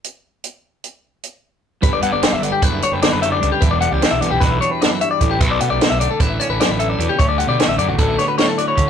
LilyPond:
<<
  \new Staff \with { instrumentName = "Clean electric guitar" } { \time 9/8 \key g \lydian \tempo 4. = 101 r1 r8 | b'16 d''16 fis''16 d''8 e''16 d''16 g'16 b'8 cis''16 b'16 d''16 b'16 e''16 d''8 g'16 | b'16 d''16 fis''16 d''8 e''16 d''16 g'16 b'8 cis''16 b'16 d''16 b'16 e''16 d''8 g'16 | b'16 d''16 fis''16 d''8 e''16 d''16 a'16 b'8 cis''16 b'16 d''16 b'16 e''16 d''8 g'16 |
cis''16 d''16 fis''16 d''8 e''16 d''16 fis'16 a'8 cis''16 b'16 cis''16 a'16 d''16 cis''8 r16 | }
  \new Staff \with { instrumentName = "Clean electric guitar" } { \time 9/8 \key g \lydian << { r1 r8 | b16 d'16 b8 d'4 fis'8 d'4 g'8 d'8 | d'8 g8 d'4 fis'8 d'2 | b16 cis'16 a8 b16 cis'8. e'8 cis'4 a'8 cis'8 |
cis'8 g16 a16 cis'4 fis'8 b16 cis'8. fis'8 cis'8 | } \\ { r1 r8 | g,4. d4. d4 g,8 | e,4. e4. fis,8 g,8 a,8 | b,4. d4. fis,4 b,8 |
d,4. d4. a,4 d,8 | } >> }
  \new Staff \with { instrumentName = "Fingered electric bass" } { \clef bass \time 9/8 \key g \lydian r1 r8 | g,,8 g,16 g,,16 r16 g,,8 r16 fis,,8 r16 fis,,16 r16 fis,,8. cis,16 r16 | e,,8. cis,16 r16 b,,16 g,,16 b,,16 b,,8 r4. a,,8 | b,,8 b,16 b,,16 r16 b,,8 r16 a,,8 r16 a,,16 r16 a,,8. e,16 r16 |
d,8. b,16 r16 a,,16 fis,16 a,,16 a,,8 r4. d8 | }
  \new DrumStaff \with { instrumentName = "Drums" } \drummode { \time 9/8 hh4 hh4 hh4 hh4. | <hh bd>8 hh8 <hh sn>8 hh8 <hh bd>8 hh8 <hh sn>8 hh8 hh8 | <hh bd>8 hh8 <hh sn>8 hh8 <hh bd sn>8 hh8 <hh sn>8 hh8 <hh bd>8 | <hh bd>8 hh8 <hh sn>8 hh8 <hh bd>8 hh8 <hh sn>8 hh8 hh8 |
<hh bd>8 hh8 <hh sn>8 hh8 <hh bd>8 <hh sn>8 <hh sn>8 hh8 <hh bd>8 | }
>>